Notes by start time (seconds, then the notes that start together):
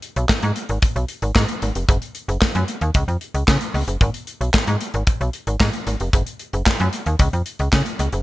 0.02 closed hi-hat
0.16 B1, closed hi-hat
0.29 G#2, kick, snare, clap
0.42 G#2, closed hi-hat
0.56 closed hi-hat
0.69 G#1, closed hi-hat
0.82 kick, closed hi-hat
0.96 B1, closed hi-hat
1.08 closed hi-hat
1.22 G#1, closed hi-hat
1.36 G#2, kick, snare, clap
1.48 closed hi-hat
1.62 G#1, closed hi-hat
1.75 F1, closed hi-hat
1.89 F#1, kick, closed hi-hat
2.02 closed hi-hat
2.15 closed hi-hat
2.28 F#1, closed hi-hat
2.42 F#2, kick, snare, clap
2.55 F#2, closed hi-hat
2.68 closed hi-hat
2.81 D#2, closed hi-hat
2.94 C#2, kick, closed hi-hat
3.08 F2, closed hi-hat
3.21 closed hi-hat
3.34 C#2, closed hi-hat
3.48 C#3, kick, snare, clap
3.61 closed hi-hat
3.74 C#2, open hi-hat
3.88 F#1, closed hi-hat
4.01 G#1, kick, closed hi-hat
4.14 closed hi-hat
4.27 closed hi-hat
4.41 B1, closed hi-hat
4.54 G#2, kick, snare, clap
4.67 G#2, closed hi-hat
4.81 closed hi-hat
4.94 G#1, closed hi-hat
5.07 kick, closed hi-hat
5.21 B1, closed hi-hat
5.33 closed hi-hat
5.47 G#1, closed hi-hat
5.60 G#2, kick, snare, clap
5.73 closed hi-hat
5.87 G#1, closed hi-hat
6.00 F1, closed hi-hat
6.13 F#1, kick, closed hi-hat
6.27 closed hi-hat
6.39 closed hi-hat
6.53 F#1, closed hi-hat
6.66 F#2, kick, snare, clap
6.80 F#2, closed hi-hat
6.93 closed hi-hat
7.06 D#2, closed hi-hat
7.19 C#2, kick, closed hi-hat
7.33 F2, closed hi-hat
7.46 closed hi-hat
7.59 C#2, closed hi-hat
7.73 C#3, kick, snare, clap
7.86 closed hi-hat
7.99 C#2, closed hi-hat
8.12 F#1, closed hi-hat